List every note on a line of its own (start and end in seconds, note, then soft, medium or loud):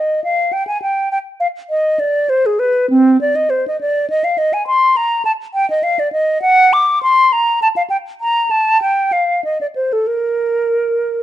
0.00 0.24 D#5 medium
0.24 0.54 F5 medium
0.53 0.67 G5 medium
0.67 0.81 G#5 medium
0.82 1.11 G5 medium
1.12 1.18 G5 medium
1.40 1.47 F5 medium
1.70 2.01 D#5 medium
1.99 2.31 D5 medium
2.29 2.48 C5 medium
2.46 2.61 G#4 medium
2.59 2.89 B4 medium
2.90 3.20 C4 medium
3.21 3.37 D5 medium
3.36 3.51 D#5 medium
3.50 3.65 C5 medium
3.68 3.80 D#5 medium
3.81 4.09 D5 medium
4.10 4.26 D#5 medium
4.24 4.40 F5 medium
4.38 4.55 D#5 medium
4.53 4.66 G#5 medium
4.67 4.98 C6 medium
4.97 5.24 A#5 medium
5.25 5.32 A5 medium
5.54 5.69 G5 medium
5.70 5.85 D#5 medium
5.83 6.01 F5 medium
5.99 6.12 D5 medium
6.12 6.41 D#5 medium
6.42 6.75 F#5 loud
6.73 7.02 D6 medium
7.03 7.34 C6 medium
7.33 7.62 A#5 medium
7.62 7.68 A5 medium
7.76 7.82 F5 medium
7.90 7.97 G5 medium
8.21 8.52 A#5 medium
8.51 8.81 A5 medium
8.82 9.14 G5 medium
9.12 9.44 F5 medium
9.44 9.60 D#5 medium
9.61 9.67 D5 medium
9.76 9.94 C5 medium
9.93 10.09 A4 soft
10.07 11.23 A#4 medium